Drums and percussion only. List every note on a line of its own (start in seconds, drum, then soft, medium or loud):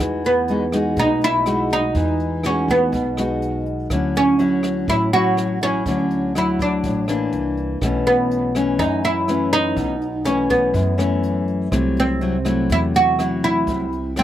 0.00 kick medium
0.24 closed hi-hat soft
0.48 closed hi-hat soft
0.72 cross-stick medium
0.72 closed hi-hat soft
0.96 kick medium
0.96 closed hi-hat soft
1.21 closed hi-hat soft
1.46 cross-stick medium
1.46 closed hi-hat soft
1.70 closed hi-hat soft
1.95 kick medium
1.95 closed hi-hat soft
2.20 closed hi-hat soft
2.43 cross-stick medium
2.43 closed hi-hat soft
2.68 kick soft
2.68 closed hi-hat soft
2.93 kick medium
2.93 closed hi-hat soft
3.17 cross-stick medium
3.17 closed hi-hat soft
3.42 closed hi-hat soft
3.66 closed hi-hat soft
3.90 kick medium
3.90 cross-stick medium
3.90 closed hi-hat soft
4.15 closed hi-hat soft
4.39 closed hi-hat soft
4.63 cross-stick medium
4.63 closed hi-hat soft
4.88 kick medium
4.88 closed hi-hat soft
5.13 closed hi-hat soft
5.37 cross-stick soft
5.37 closed hi-hat soft
5.61 closed hi-hat soft
5.86 kick medium
5.86 closed hi-hat soft
6.11 closed hi-hat soft
6.35 cross-stick medium
6.35 closed hi-hat soft
6.59 kick soft
6.59 closed hi-hat soft
6.84 kick medium
6.84 closed hi-hat soft
7.08 cross-stick medium
7.08 closed hi-hat soft
7.32 closed hi-hat soft
7.57 closed hi-hat soft
7.82 kick medium
7.82 cross-stick medium
7.82 closed hi-hat soft
8.06 closed hi-hat soft
8.31 closed hi-hat soft
8.55 cross-stick medium
8.55 closed hi-hat soft
8.79 kick medium
8.79 closed hi-hat soft
9.04 closed hi-hat soft
9.28 cross-stick medium
9.28 closed hi-hat soft
9.53 closed hi-hat soft
9.77 kick medium
9.77 closed hi-hat soft
10.02 closed hi-hat soft
10.26 cross-stick medium
10.26 closed hi-hat soft
10.50 kick medium
10.50 closed hi-hat soft
10.74 kick medium
10.74 closed hi-hat soft
10.99 cross-stick medium
10.99 closed hi-hat soft
11.23 closed hi-hat soft
11.48 closed hi-hat soft
11.72 kick medium
11.72 cross-stick medium
11.72 closed hi-hat soft
11.97 closed hi-hat soft
12.21 closed hi-hat soft
12.45 cross-stick medium
12.45 closed hi-hat soft
12.70 kick medium
12.70 closed hi-hat soft
12.94 closed hi-hat soft
13.19 cross-stick medium
13.19 closed hi-hat soft
13.67 kick medium
13.67 closed hi-hat soft
13.92 closed hi-hat soft
14.16 cross-stick medium
14.16 closed hi-hat soft